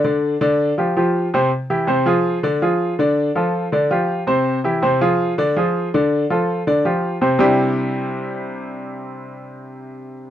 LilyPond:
\new Staff \with { instrumentName = "Grand piano" } { \time 4/4 \key c \major \tempo 4 = 163 <d d' d''>4 <d d' d''>4 <f f' g'>8 <f f' g'>4 <c c' c''>8 | r8 <e e' g'>8 <c c' c''>8 <f f' aes'>4 <d d' d''>8 <f f' aes'>4 | <d d' d''>4 <f f' a'>4 <d d' d''>8 <f f' g'>4 <c c' c''>8~ | <c c' c''>8 <e e' g'>8 <c c' c''>8 <f f' aes'>4 <d d' d''>8 <f f' aes'>4 |
<d d' d''>4 <f f' a'>4 <d d' d''>8 <f f' g'>4 <c c' c''>8 | <c g c' d' e' g'>1~ | <c g c' d' e' g'>1 | }